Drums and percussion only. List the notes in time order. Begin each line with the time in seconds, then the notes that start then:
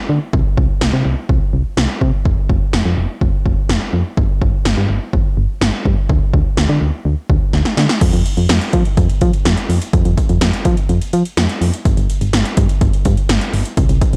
0.33 kick
0.58 kick
0.81 snare
1.29 kick
1.77 snare
2.01 kick
2.25 kick
2.50 kick
2.73 snare
3.21 kick
3.46 kick
3.69 snare
4.17 kick
4.42 kick
4.65 snare
5.13 kick
5.61 snare
5.85 kick
6.09 kick
6.34 kick
6.57 snare
7.30 kick
7.53 snare
7.65 snare
7.77 snare
7.89 snare
8.01 kick, closed hi-hat, crash
8.13 closed hi-hat
8.26 closed hi-hat
8.37 closed hi-hat
8.49 snare, closed hi-hat
8.61 closed hi-hat
8.73 kick, closed hi-hat
8.85 closed hi-hat
8.97 kick, closed hi-hat
9.10 closed hi-hat
9.21 kick, closed hi-hat
9.33 closed hi-hat
9.45 snare, closed hi-hat
9.57 closed hi-hat
9.70 open hi-hat
9.82 closed hi-hat
9.93 kick, closed hi-hat
10.05 closed hi-hat
10.18 kick, closed hi-hat
10.29 closed hi-hat
10.41 snare, closed hi-hat
10.53 closed hi-hat
10.65 kick, closed hi-hat
10.77 closed hi-hat
10.89 closed hi-hat
11.02 closed hi-hat
11.13 closed hi-hat
11.25 closed hi-hat
11.37 snare, closed hi-hat
11.49 closed hi-hat
11.62 open hi-hat
11.74 closed hi-hat
11.85 kick, closed hi-hat
11.97 closed hi-hat
12.10 closed hi-hat
12.21 closed hi-hat
12.33 snare, closed hi-hat
12.45 closed hi-hat
12.57 kick, closed hi-hat
12.69 closed hi-hat
12.81 kick, closed hi-hat
12.93 closed hi-hat
13.05 kick, closed hi-hat
13.17 closed hi-hat
13.29 snare, closed hi-hat
13.41 closed hi-hat
13.53 open hi-hat
13.65 closed hi-hat
13.77 kick, closed hi-hat
13.89 closed hi-hat
14.01 kick, closed hi-hat
14.13 closed hi-hat